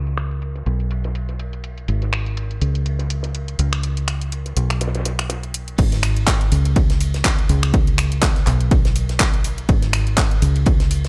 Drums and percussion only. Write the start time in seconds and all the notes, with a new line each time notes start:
0.07 closed hi-hat, ride
0.18 finger snap, closed hi-hat, ride
0.31 closed hi-hat
0.42 closed hi-hat, ride
0.55 snare, closed hi-hat
0.66 closed hi-hat, ride
0.80 closed hi-hat
0.91 closed hi-hat, ride
1.04 snare, closed hi-hat
1.15 closed hi-hat, ride
1.29 snare, closed hi-hat
1.39 closed hi-hat, ride
1.53 closed hi-hat, ride
1.63 closed hi-hat, ride
1.78 closed hi-hat
1.88 closed hi-hat, ride
2.02 snare, closed hi-hat
2.13 finger snap, closed hi-hat, ride
2.26 closed hi-hat
2.37 closed hi-hat, ride
2.51 closed hi-hat
2.61 closed hi-hat, ride
2.75 closed hi-hat
2.85 closed hi-hat, ride
2.99 snare, closed hi-hat
3.10 closed hi-hat, ride
3.23 snare, closed hi-hat
3.35 closed hi-hat, ride
3.48 closed hi-hat, ride
3.59 closed hi-hat, ride
3.73 finger snap, closed hi-hat
3.83 closed hi-hat, ride
3.97 closed hi-hat, ride
4.08 finger snap, closed hi-hat, ride
4.21 closed hi-hat
4.32 closed hi-hat, ride
4.46 snare, closed hi-hat
4.57 closed hi-hat, ride
4.70 finger snap, closed hi-hat
4.81 snare, closed hi-hat, ride
4.87 snare, ride
4.95 snare, closed hi-hat, ride
5.00 snare, ride
5.05 snare, closed hi-hat, ride
5.19 finger snap, snare, closed hi-hat
5.30 snare, closed hi-hat, ride
5.43 closed hi-hat, ride
5.54 closed hi-hat
5.68 closed hi-hat
5.78 kick, closed hi-hat, crash, ride
5.92 snare, closed hi-hat
6.03 finger snap, open hi-hat, ride
6.17 closed hi-hat
6.27 kick, snare, clap, closed hi-hat, ride
6.41 closed hi-hat
6.52 open hi-hat, ride
6.65 closed hi-hat, ride
6.76 kick, closed hi-hat, ride
6.90 snare, closed hi-hat
7.01 open hi-hat, ride
7.14 snare, closed hi-hat
7.25 kick, snare, clap, closed hi-hat
7.39 closed hi-hat, ride
7.49 open hi-hat, ride
7.63 finger snap, closed hi-hat
7.74 kick, closed hi-hat, ride
7.87 closed hi-hat, ride
7.98 finger snap, open hi-hat, ride
8.12 closed hi-hat
8.22 kick, snare, clap, closed hi-hat, ride
8.36 snare, closed hi-hat
8.47 clap, open hi-hat, ride
8.61 closed hi-hat
8.71 kick, closed hi-hat, ride
8.85 snare, closed hi-hat
8.96 open hi-hat, ride
9.09 snare, closed hi-hat
9.20 kick, snare, clap, open hi-hat
9.34 closed hi-hat, ride
9.44 open hi-hat, ride
9.58 closed hi-hat
9.69 kick, closed hi-hat, ride
9.82 snare, closed hi-hat
9.93 finger snap, open hi-hat, ride
10.07 closed hi-hat
10.17 kick, snare, clap, closed hi-hat, ride
10.31 closed hi-hat
10.42 open hi-hat, ride
10.56 closed hi-hat, ride
10.66 kick, closed hi-hat, ride
10.80 snare, closed hi-hat
10.91 open hi-hat, ride
11.05 snare, closed hi-hat